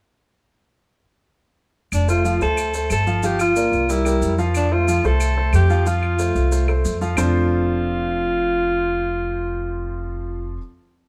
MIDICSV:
0, 0, Header, 1, 5, 480
1, 0, Start_track
1, 0, Key_signature, -1, "major"
1, 0, Tempo, 327869
1, 2812, Time_signature, 4, 2, 24, 8
1, 16227, End_track
2, 0, Start_track
2, 0, Title_t, "Grand piano"
2, 0, Program_c, 0, 0
2, 3048, Note_on_c, 0, 69, 64
2, 3049, Note_on_c, 0, 57, 63
2, 3053, Note_on_c, 0, 72, 65
2, 3247, Note_off_c, 0, 57, 0
2, 3247, Note_off_c, 0, 69, 0
2, 3249, Note_off_c, 0, 72, 0
2, 3285, Note_on_c, 0, 53, 69
2, 3291, Note_on_c, 0, 65, 66
2, 3293, Note_on_c, 0, 77, 66
2, 3484, Note_off_c, 0, 53, 0
2, 3488, Note_off_c, 0, 65, 0
2, 3489, Note_off_c, 0, 77, 0
2, 3528, Note_on_c, 0, 57, 66
2, 3535, Note_on_c, 0, 69, 69
2, 3540, Note_on_c, 0, 72, 67
2, 3923, Note_off_c, 0, 57, 0
2, 3927, Note_off_c, 0, 69, 0
2, 3930, Note_off_c, 0, 72, 0
2, 4018, Note_on_c, 0, 57, 61
2, 4024, Note_on_c, 0, 69, 65
2, 4027, Note_on_c, 0, 72, 61
2, 4409, Note_off_c, 0, 57, 0
2, 4412, Note_off_c, 0, 69, 0
2, 4414, Note_off_c, 0, 72, 0
2, 4489, Note_on_c, 0, 53, 75
2, 4495, Note_on_c, 0, 65, 69
2, 4502, Note_on_c, 0, 77, 70
2, 4687, Note_off_c, 0, 53, 0
2, 4690, Note_off_c, 0, 65, 0
2, 4694, Note_off_c, 0, 77, 0
2, 4731, Note_on_c, 0, 53, 71
2, 4739, Note_on_c, 0, 65, 65
2, 4741, Note_on_c, 0, 77, 68
2, 5125, Note_off_c, 0, 53, 0
2, 5130, Note_off_c, 0, 65, 0
2, 5131, Note_off_c, 0, 77, 0
2, 5214, Note_on_c, 0, 58, 56
2, 5219, Note_on_c, 0, 70, 61
2, 5223, Note_on_c, 0, 74, 59
2, 5607, Note_off_c, 0, 58, 0
2, 5610, Note_off_c, 0, 70, 0
2, 5612, Note_off_c, 0, 74, 0
2, 5695, Note_on_c, 0, 55, 62
2, 5700, Note_on_c, 0, 67, 63
2, 5704, Note_on_c, 0, 70, 63
2, 5891, Note_off_c, 0, 55, 0
2, 5894, Note_off_c, 0, 67, 0
2, 5896, Note_off_c, 0, 70, 0
2, 5936, Note_on_c, 0, 55, 69
2, 5938, Note_on_c, 0, 67, 67
2, 5940, Note_on_c, 0, 70, 69
2, 6329, Note_off_c, 0, 55, 0
2, 6330, Note_off_c, 0, 67, 0
2, 6331, Note_off_c, 0, 70, 0
2, 6416, Note_on_c, 0, 53, 76
2, 6422, Note_on_c, 0, 65, 78
2, 6425, Note_on_c, 0, 77, 76
2, 6809, Note_off_c, 0, 53, 0
2, 6813, Note_off_c, 0, 65, 0
2, 6814, Note_off_c, 0, 77, 0
2, 6901, Note_on_c, 0, 57, 67
2, 6905, Note_on_c, 0, 69, 64
2, 6906, Note_on_c, 0, 72, 69
2, 7095, Note_off_c, 0, 57, 0
2, 7097, Note_off_c, 0, 69, 0
2, 7098, Note_off_c, 0, 72, 0
2, 7145, Note_on_c, 0, 53, 70
2, 7154, Note_on_c, 0, 65, 67
2, 7160, Note_on_c, 0, 77, 67
2, 7338, Note_off_c, 0, 53, 0
2, 7344, Note_off_c, 0, 65, 0
2, 7347, Note_off_c, 0, 77, 0
2, 7386, Note_on_c, 0, 57, 71
2, 7390, Note_on_c, 0, 72, 70
2, 7391, Note_on_c, 0, 69, 73
2, 7776, Note_off_c, 0, 57, 0
2, 7779, Note_off_c, 0, 69, 0
2, 7779, Note_off_c, 0, 72, 0
2, 7863, Note_on_c, 0, 57, 67
2, 7864, Note_on_c, 0, 69, 66
2, 7869, Note_on_c, 0, 72, 69
2, 8255, Note_off_c, 0, 57, 0
2, 8255, Note_off_c, 0, 69, 0
2, 8259, Note_off_c, 0, 72, 0
2, 8340, Note_on_c, 0, 53, 76
2, 8346, Note_on_c, 0, 65, 77
2, 8352, Note_on_c, 0, 77, 77
2, 8537, Note_off_c, 0, 53, 0
2, 8540, Note_off_c, 0, 65, 0
2, 8544, Note_off_c, 0, 77, 0
2, 8584, Note_on_c, 0, 53, 66
2, 8586, Note_on_c, 0, 65, 69
2, 8587, Note_on_c, 0, 77, 68
2, 8977, Note_off_c, 0, 53, 0
2, 8978, Note_off_c, 0, 65, 0
2, 8978, Note_off_c, 0, 77, 0
2, 9060, Note_on_c, 0, 57, 58
2, 9066, Note_on_c, 0, 69, 58
2, 9072, Note_on_c, 0, 72, 61
2, 9455, Note_off_c, 0, 57, 0
2, 9458, Note_off_c, 0, 69, 0
2, 9462, Note_off_c, 0, 72, 0
2, 9541, Note_on_c, 0, 57, 62
2, 9545, Note_on_c, 0, 69, 61
2, 9546, Note_on_c, 0, 72, 62
2, 9738, Note_off_c, 0, 57, 0
2, 9741, Note_off_c, 0, 69, 0
2, 9741, Note_off_c, 0, 72, 0
2, 9784, Note_on_c, 0, 57, 62
2, 9790, Note_on_c, 0, 69, 67
2, 9793, Note_on_c, 0, 72, 67
2, 10178, Note_off_c, 0, 57, 0
2, 10181, Note_off_c, 0, 69, 0
2, 10183, Note_off_c, 0, 72, 0
2, 10265, Note_on_c, 0, 53, 72
2, 10270, Note_on_c, 0, 65, 71
2, 10273, Note_on_c, 0, 77, 77
2, 10461, Note_off_c, 0, 53, 0
2, 10464, Note_off_c, 0, 65, 0
2, 10466, Note_off_c, 0, 77, 0
2, 10493, Note_on_c, 0, 53, 77
2, 10501, Note_on_c, 0, 60, 69
2, 10502, Note_on_c, 0, 62, 69
2, 10508, Note_on_c, 0, 65, 70
2, 10510, Note_on_c, 0, 69, 66
2, 10512, Note_on_c, 0, 72, 91
2, 15462, Note_off_c, 0, 53, 0
2, 15471, Note_off_c, 0, 60, 0
2, 15472, Note_off_c, 0, 62, 0
2, 15478, Note_off_c, 0, 65, 0
2, 15479, Note_off_c, 0, 69, 0
2, 15481, Note_off_c, 0, 72, 0
2, 16227, End_track
3, 0, Start_track
3, 0, Title_t, "Alto saxophone"
3, 0, Program_c, 1, 65
3, 2835, Note_on_c, 1, 62, 82
3, 3048, Note_off_c, 1, 62, 0
3, 3070, Note_on_c, 1, 65, 86
3, 3508, Note_off_c, 1, 65, 0
3, 3547, Note_on_c, 1, 69, 98
3, 4209, Note_off_c, 1, 69, 0
3, 4272, Note_on_c, 1, 69, 95
3, 4751, Note_on_c, 1, 67, 86
3, 4773, Note_off_c, 1, 69, 0
3, 4981, Note_off_c, 1, 67, 0
3, 4987, Note_on_c, 1, 65, 88
3, 5715, Note_on_c, 1, 64, 88
3, 5737, Note_off_c, 1, 65, 0
3, 6425, Note_off_c, 1, 64, 0
3, 6683, Note_on_c, 1, 62, 87
3, 6918, Note_on_c, 1, 65, 85
3, 6940, Note_off_c, 1, 62, 0
3, 7403, Note_on_c, 1, 69, 100
3, 7425, Note_off_c, 1, 65, 0
3, 8111, Note_off_c, 1, 69, 0
3, 8125, Note_on_c, 1, 67, 81
3, 8602, Note_on_c, 1, 65, 79
3, 8624, Note_off_c, 1, 67, 0
3, 10034, Note_off_c, 1, 65, 0
3, 10514, Note_on_c, 1, 65, 87
3, 15460, Note_off_c, 1, 65, 0
3, 16227, End_track
4, 0, Start_track
4, 0, Title_t, "Upright bass"
4, 0, Program_c, 2, 32
4, 2813, Note_on_c, 2, 29, 84
4, 3482, Note_off_c, 2, 29, 0
4, 3530, Note_on_c, 2, 38, 83
4, 4200, Note_off_c, 2, 38, 0
4, 4250, Note_on_c, 2, 31, 81
4, 5369, Note_off_c, 2, 31, 0
4, 5443, Note_on_c, 2, 36, 81
4, 6117, Note_off_c, 2, 36, 0
4, 6168, Note_on_c, 2, 41, 84
4, 7290, Note_off_c, 2, 41, 0
4, 7373, Note_on_c, 2, 36, 80
4, 8046, Note_off_c, 2, 36, 0
4, 8094, Note_on_c, 2, 41, 84
4, 9217, Note_off_c, 2, 41, 0
4, 9299, Note_on_c, 2, 36, 77
4, 9971, Note_off_c, 2, 36, 0
4, 10020, Note_on_c, 2, 41, 82
4, 10446, Note_off_c, 2, 41, 0
4, 10502, Note_on_c, 2, 29, 89
4, 15471, Note_off_c, 2, 29, 0
4, 16227, End_track
5, 0, Start_track
5, 0, Title_t, "Drums"
5, 2810, Note_on_c, 9, 75, 60
5, 2815, Note_on_c, 9, 70, 60
5, 2957, Note_off_c, 9, 75, 0
5, 2961, Note_off_c, 9, 70, 0
5, 3054, Note_on_c, 9, 70, 54
5, 3200, Note_off_c, 9, 70, 0
5, 3293, Note_on_c, 9, 70, 59
5, 3440, Note_off_c, 9, 70, 0
5, 3531, Note_on_c, 9, 70, 25
5, 3677, Note_off_c, 9, 70, 0
5, 3764, Note_on_c, 9, 75, 58
5, 3769, Note_on_c, 9, 70, 68
5, 3910, Note_off_c, 9, 75, 0
5, 3915, Note_off_c, 9, 70, 0
5, 4008, Note_on_c, 9, 70, 57
5, 4155, Note_off_c, 9, 70, 0
5, 4243, Note_on_c, 9, 75, 59
5, 4249, Note_on_c, 9, 70, 63
5, 4390, Note_off_c, 9, 75, 0
5, 4396, Note_off_c, 9, 70, 0
5, 4491, Note_on_c, 9, 70, 26
5, 4637, Note_off_c, 9, 70, 0
5, 4727, Note_on_c, 9, 70, 61
5, 4873, Note_off_c, 9, 70, 0
5, 4968, Note_on_c, 9, 70, 56
5, 4969, Note_on_c, 9, 75, 62
5, 5114, Note_off_c, 9, 70, 0
5, 5116, Note_off_c, 9, 75, 0
5, 5212, Note_on_c, 9, 70, 65
5, 5358, Note_off_c, 9, 70, 0
5, 5456, Note_on_c, 9, 70, 28
5, 5602, Note_off_c, 9, 70, 0
5, 5699, Note_on_c, 9, 70, 67
5, 5845, Note_off_c, 9, 70, 0
5, 5930, Note_on_c, 9, 75, 56
5, 5944, Note_on_c, 9, 70, 57
5, 6076, Note_off_c, 9, 75, 0
5, 6091, Note_off_c, 9, 70, 0
5, 6176, Note_on_c, 9, 70, 64
5, 6323, Note_off_c, 9, 70, 0
5, 6421, Note_on_c, 9, 70, 27
5, 6568, Note_off_c, 9, 70, 0
5, 6653, Note_on_c, 9, 75, 63
5, 6657, Note_on_c, 9, 70, 58
5, 6800, Note_off_c, 9, 75, 0
5, 6803, Note_off_c, 9, 70, 0
5, 7147, Note_on_c, 9, 70, 68
5, 7293, Note_off_c, 9, 70, 0
5, 7383, Note_on_c, 9, 70, 25
5, 7529, Note_off_c, 9, 70, 0
5, 7617, Note_on_c, 9, 70, 69
5, 7617, Note_on_c, 9, 75, 59
5, 7763, Note_off_c, 9, 70, 0
5, 7763, Note_off_c, 9, 75, 0
5, 8091, Note_on_c, 9, 75, 62
5, 8101, Note_on_c, 9, 70, 59
5, 8238, Note_off_c, 9, 75, 0
5, 8247, Note_off_c, 9, 70, 0
5, 8342, Note_on_c, 9, 70, 28
5, 8488, Note_off_c, 9, 70, 0
5, 8582, Note_on_c, 9, 70, 63
5, 8729, Note_off_c, 9, 70, 0
5, 8822, Note_on_c, 9, 75, 63
5, 8969, Note_off_c, 9, 75, 0
5, 9060, Note_on_c, 9, 70, 62
5, 9207, Note_off_c, 9, 70, 0
5, 9303, Note_on_c, 9, 70, 27
5, 9449, Note_off_c, 9, 70, 0
5, 9544, Note_on_c, 9, 70, 69
5, 9691, Note_off_c, 9, 70, 0
5, 9782, Note_on_c, 9, 75, 62
5, 9928, Note_off_c, 9, 75, 0
5, 10026, Note_on_c, 9, 70, 57
5, 10172, Note_off_c, 9, 70, 0
5, 10269, Note_on_c, 9, 70, 28
5, 10416, Note_off_c, 9, 70, 0
5, 10495, Note_on_c, 9, 75, 91
5, 10506, Note_on_c, 9, 70, 88
5, 10641, Note_off_c, 9, 75, 0
5, 10652, Note_off_c, 9, 70, 0
5, 16227, End_track
0, 0, End_of_file